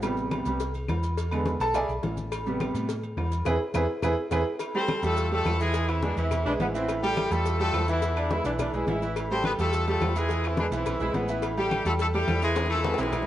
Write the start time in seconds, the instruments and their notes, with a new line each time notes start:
Already playing: fingered electric bass A1
0.02 grand piano C3 G3 B3, cowbell, high conga, low agogo, claves, maracas
0.17 high conga, maracas
0.31 cowbell, high conga, low timbale, low agogo, claves, maracas
0.45 fingered electric bass C2, grand piano C3 G3 B3, cowbell, high conga, low agogo, maracas
0.59 cowbell, high conga, maracas
0.74 high conga, low agogo, maracas
0.88 fingered electric bass E2, cowbell, high conga, low timbale, low agogo, claves, maracas
1.03 cowbell, high conga, maracas
1.17 cowbell, high conga, low agogo, maracas
1.31 grand piano D3 G#3 B3, high conga, low agogo, claves, maracas
1.45 cowbell, high conga, low timbale, maracas
1.60 fingered electric bass B1, grand piano A4 A5, cowbell, high conga, low agogo, maracas
1.74 grand piano G#4 D5 E5 G#5, cowbell, high conga, low conga, low agogo, claves, maracas
1.88 fingered electric bass B1, high conga, maracas
2.02 fingered electric bass A1, cowbell, high conga, low timbale, low agogo, maracas
2.17 high conga, maracas
2.31 cowbell, high conga, low agogo, claves, maracas
2.46 grand piano C3 G3 B3, high conga, maracas
2.60 cowbell, high conga, low timbale, low agogo, claves, maracas
2.74 fingered electric bass A2, cowbell, high conga, low agogo, maracas
2.89 cowbell, high conga, maracas
3.03 high conga, low agogo, maracas
3.17 fingered electric bass E2, cowbell, high conga, low timbale, low agogo, claves, maracas
3.31 cowbell, high conga, maracas
3.45 fingered electric bass E2, grand piano E4 G#4 B4, cowbell, low conga, high timbale, claves, maracas
3.74 fingered electric bass E2, grand piano E4 G#4 B4, cowbell, low conga, high timbale, claves, maracas
4.02 fingered electric bass E2, grand piano E4 G#4 B4, cowbell, low conga, high timbale, claves, maracas
4.31 fingered electric bass E2, grand piano E4 G#4 B4, cowbell, low conga, high timbale, claves, maracas
4.60 cowbell, high conga, low agogo, claves, maracas
4.74 grand piano G3 G4 A4, horn section C4 A4 C5, high conga, maracas
4.88 cowbell, high conga, low timbale, low agogo, claves, maracas
5.02 fingered electric bass E2, grand piano G3 G4 A4, horn section A3 F4 A4, cowbell, high conga, low agogo, maracas
5.17 cowbell, high conga, maracas
5.31 grand piano G3 G4 A4, horn section A3 F4 A4, high conga, low agogo, maracas
5.45 fingered electric bass E2, cowbell, high conga, low timbale, low agogo, claves, maracas
5.60 grand piano E3 E4 E5, horn section G#3 E4 G#4, cowbell, high conga, maracas
5.74 grand piano E3 E4 E5, cowbell, high conga, low agogo, maracas
5.88 horn section E3 C4 E4, high conga, low agogo, claves, maracas
6.02 horn section D3 B3 D4, grand piano G#3 G#4 B4, cowbell, high conga, low timbale, maracas
6.16 fingered electric bass E2, horn section E3 C4 E4, grand piano E3 E4 E5, cowbell, high conga, low agogo, maracas
6.31 cowbell, high conga, low conga, low agogo, claves, maracas
6.45 fingered electric bass B1, grand piano G#3 G#4 B4, saxophone section D4, high conga, maracas
6.59 fingered electric bass A1, saxophone section B3, cowbell, high conga, low timbale, low agogo, maracas
6.74 grand piano E3 E4 E5, saxophone section C4, maracas
6.88 cowbell, high conga, low agogo, claves, maracas
7.03 horn section G3 E4 G4, grand piano G3 G4 A4, high conga, maracas
7.16 cowbell, high conga, low timbale, low agogo, claves, maracas
7.30 fingered electric bass E2, grand piano G3 G4 A4, horn section A3 F4 A4, cowbell, high conga, low agogo, maracas
7.45 cowbell, high conga, maracas
7.59 grand piano G3 G4 A4, horn section A3 F4 A4, high conga, low agogo, maracas
7.73 fingered electric bass E2, cowbell, high conga, low timbale, low agogo, claves, maracas
7.88 grand piano E3 E4 E5, horn section E3 B3 E4, cowbell, high conga, maracas
8.02 grand piano E3 E4 E5, cowbell, high conga, low agogo, maracas
8.17 saxophone section D4, high conga, low agogo, claves, maracas
8.31 grand piano G#3 G#4 B4, saxophone section E4, cowbell, high conga, low timbale, maracas
8.44 fingered electric bass B1, grand piano E3 E4 E5, saxophone section D4, cowbell, high conga, low agogo, maracas
8.59 saxophone section D4, cowbell, high conga, low conga, low agogo, claves, maracas
8.73 fingered electric bass B1, grand piano G#3 G#4 B4, saxophone section E4, high conga, maracas
8.87 fingered electric bass A1, saxophone section E4, cowbell, high conga, low timbale, low agogo, maracas
9.02 grand piano E3 E4 E5, maracas
9.15 cowbell, high conga, low agogo, claves, maracas
9.30 grand piano G3 G4 A4, horn section C4 A4 C5, high conga, maracas
9.44 horn section B3 G4 B4, cowbell, high conga, low timbale, low agogo, claves, maracas
9.58 fingered electric bass E2, grand piano G3 G4 A4, horn section A3 F4 A4, cowbell, high conga, low agogo, maracas
9.72 cowbell, high conga, maracas
9.87 grand piano G3 G4 A4, horn section A3 F4 A4, high conga, low agogo, maracas
10.01 fingered electric bass E2, cowbell, high conga, low timbale, low agogo, claves, maracas
10.15 grand piano E3 E4 E5, horn section G#3 E4 G#4, cowbell, high conga, maracas
10.29 grand piano E3 E4 E5, cowbell, high conga, low agogo, maracas
10.43 horn section E3 C4 E4, high conga, low agogo, claves, maracas
10.57 horn section D3 B3 D4, grand piano G#3 G#4 B4, cowbell, high conga, low timbale, maracas
10.71 fingered electric bass B1, grand piano E3 E4 E5, horn section E3 C4 E4, cowbell, high conga, low agogo, maracas
10.86 cowbell, high conga, low conga, low agogo, claves, maracas
11.00 fingered electric bass B1, grand piano G#3 G#4 B4, saxophone section E4, high conga, low conga, maracas
11.14 fingered electric bass A1, saxophone section B3, cowbell, high conga, low timbale, low agogo, maracas
11.29 grand piano E3 E4 E5, maracas
11.42 cowbell, high conga, low agogo, claves, maracas
11.57 grand piano G3 G4 A4, horn section G3 E4 G4, high conga, maracas
11.71 cowbell, high conga, low timbale, low agogo, claves, maracas
11.85 fingered electric bass E2, grand piano G3 G4 A4, horn section A3 F4 A4, cowbell, high conga, low agogo, maracas
11.99 horn section A3 E4 A4, cowbell, high conga, maracas
12.14 grand piano G3 G4 A4, horn section G3 E4 G4, high conga, low agogo, maracas
12.27 fingered electric bass E2, cowbell, high conga, low timbale, low agogo, claves, maracas
12.42 grand piano E3 E4 E5, horn section G#3 E4 G#4, cowbell, high conga, maracas
12.56 grand piano E3 E4 E5, cowbell, high bongo, high conga, high timbale, low agogo, maracas
12.66 high bongo, low agogo, maracas
12.70 horn section A3 F4 A4, high conga, claves
12.75 high bongo
12.84 grand piano G#3 G#4 B4, cowbell, high bongo, high conga, high timbale, maracas
12.94 high bongo
12.98 fingered electric bass B1, grand piano E3 E4 E5, horn section G#3 E4 G#4, cowbell, high conga, high timbale, low agogo, maracas
13.03 high bongo
13.12 cowbell, high conga, low conga, low timbale, low agogo, claves, maracas
13.22 low bongo